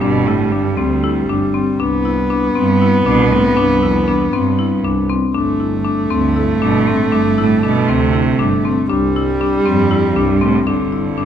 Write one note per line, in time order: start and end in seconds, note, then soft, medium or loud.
0.00 0.67 G1 medium
0.00 0.29 B2 medium
0.00 1.81 G3 medium
0.00 0.21 D4 medium
0.27 0.54 A2 medium
0.27 0.46 E4 medium
0.52 0.79 G2 medium
0.52 0.71 D4 medium
0.77 1.54 D2 medium
0.77 1.21 D2 medium
0.77 0.97 C4 medium
1.04 1.23 E4 medium
1.28 1.50 G1 medium
1.28 1.48 D4 medium
1.54 1.73 C4 medium
1.79 2.45 C2 medium
1.79 5.10 B3 loud
1.79 1.99 D4 medium
2.05 2.24 E4 medium
2.30 2.49 D4 medium
2.55 2.99 G2 medium
2.55 3.03 G2 medium
2.55 2.75 C4 medium
2.81 3.00 E4 medium
3.06 3.28 C2 loud
3.06 3.33 B2 medium
3.06 3.25 D4 medium
3.31 3.59 A2 medium
3.31 3.50 C4 medium
3.57 4.23 C2 medium
3.57 3.83 G2 medium
3.57 3.76 D4 medium
3.81 4.08 F2 medium
3.81 4.02 E4 medium
4.07 4.32 E2 medium
4.07 4.27 D4 medium
4.33 5.05 G2 medium
4.33 4.77 G2 medium
4.33 4.52 C4 medium
4.59 4.78 E4 medium
4.84 5.06 C2 medium
4.84 5.03 D4 medium
5.10 5.29 C4 medium
5.34 6.00 G1 medium
5.34 8.85 A3 loud
5.34 5.54 D4 medium
5.60 5.79 E4 medium
5.85 6.04 D4 medium
6.10 6.54 D2 medium
6.10 6.65 G2 medium
6.10 6.30 C4 medium
6.36 6.55 E4 medium
6.61 6.83 G1 medium
6.61 6.91 B2 medium
6.61 6.81 D4 medium
6.87 7.16 A2 medium
6.87 7.06 C4 medium
7.12 7.78 G1 medium
7.12 7.39 G2 medium
7.12 7.31 D4 medium
7.38 7.63 A2 medium
7.38 7.57 E4 medium
7.63 7.91 B2 medium
7.63 7.82 D4 medium
7.88 8.32 D2 medium
7.88 8.65 C3 medium
7.88 8.07 C4 medium
8.13 8.32 E4 medium
8.39 8.61 G1 medium
8.39 8.58 D4 medium
8.65 8.84 C4 medium
8.89 9.55 C2 medium
8.89 10.69 G3 loud
8.89 9.09 D4 medium
9.16 9.35 E4 medium
9.41 9.60 D4 medium
9.65 10.18 F2 medium
9.65 10.09 G2 medium
9.65 9.85 C4 medium
9.91 10.10 E4 medium
10.16 10.38 C2 medium
10.16 10.43 G2 medium
10.16 10.35 D4 medium
10.41 10.67 A2 medium
10.41 10.60 C4 medium
10.67 11.25 G1 medium
10.67 11.25 G2 medium
10.67 11.25 D3 medium
10.67 10.86 D4 medium
10.93 11.11 E4 medium
11.18 11.25 D4 medium